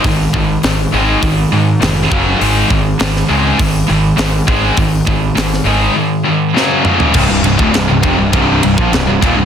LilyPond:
<<
  \new Staff \with { instrumentName = "Distorted electric guitar" } { \clef bass \time 4/4 \key aes \major \tempo 4 = 101 <aes, ees>8 <aes, ees>8 <aes, ees>8 <aes, ees aes>8 <aes, ees>8 <aes, ees>8 <aes, ees>8 <fis, cis fis>8 | <aes, ees aes>8 <aes, ees>8 <aes, ees>8 <aes, ees aes>8 <aes, ees>8 <aes, ees>8 <aes, ees>8 <aes, ees aes>8 | <aes, ees>8 <aes, ees>8 <aes, ees>8 <aes, ees aes>8 <aes, ees>8 <aes, ees>8 <fis, cis fis>8 <des, aes, des>8 | <c, g,>16 <c, g,>16 <c, g,>16 <d, a,>16 <c, g,>16 <c, g,>16 <f, c>16 <c, g,>16 <c, g, c>8 <c, g,>16 <bes, f>16 <c, g,>16 <c, g,>16 <ees, bes,>16 <c, g,>16 | }
  \new Staff \with { instrumentName = "Distorted electric guitar" } { \clef bass \time 4/4 \key aes \major <aes, ees>8 <aes, ees>8 <aes, ees>8 <aes, ees aes>8 <aes, ees>8 <aes, ees>8 <aes, ees>8 <fis, cis fis>8 | <aes, ees aes>8 <aes, ees>8 <aes, ees>8 <aes, ees aes>8 <aes, ees>8 <aes, ees>8 <aes, ees>8 <aes, ees aes>8 | <aes, ees>8 <aes, ees>8 <aes, ees>8 <aes, ees aes>8 <aes, ees>8 <aes, ees>8 <fis, cis fis>8 <des, aes, des>8 | <c, g,>16 <c, g,>16 <c, g,>16 <d, a,>16 <c, g,>16 <c, g,>16 <f, c>16 <c, g,>16 <c, g, c>8 <c, g,>16 <bes, f>16 <c, g,>16 <c, g,>16 <ees, bes,>16 <c, g,>16 | }
  \new Staff \with { instrumentName = "Overdriven electric guitar" } { \clef bass \time 4/4 \key aes \major r1 | r1 | r1 | <c, g,>16 <c, g,>16 <c, g,>16 <d, a,>16 <c, g,>16 <c, g,>16 <f, c>16 <c, g,>16 <c, g, c>8 <c, g,>16 <bes, f>16 <c, g,>16 <c, g,>16 <ees, bes,>16 <c, g,>16 | }
  \new Staff \with { instrumentName = "Picked electric bass" } { \clef bass \time 4/4 \key aes \major aes,,8 aes,,8 aes,,8 aes,,8 aes,,8 aes,8 f,,8 fis,,8 | aes,,8 aes,,8 aes,,8 des,8 aes,,8 aes,,8 aes,,8 aes,,8 | aes,,8 aes,,8 aes,,8 aes,,8 r2 | c,,16 c,,16 c,,16 d,,16 c,,16 c,,16 f,,16 c,,16 c,,8 c,,16 bes,,16 c,,16 c,,16 ees,,16 c,,16 | }
  \new DrumStaff \with { instrumentName = "Drums" } \drummode { \time 4/4 <hho bd>8 bd8 <hho sn>4 <hho bd>4 <hho sn>8 bd8 | hho8 bd8 <hho sn>16 sn8. <hho bd>4 <hho sn>8 bd8 | <hho bd>8 bd8 <hho sn>16 sn8. r4 sn8 toml16 tomfh16 | <cymc bd>8 cymr16 bd16 <cymr sn>8 <bd cymr>8 <bd cymr>8 cymr16 bd16 <cymr sn>8 <bd cymr>8 | }
>>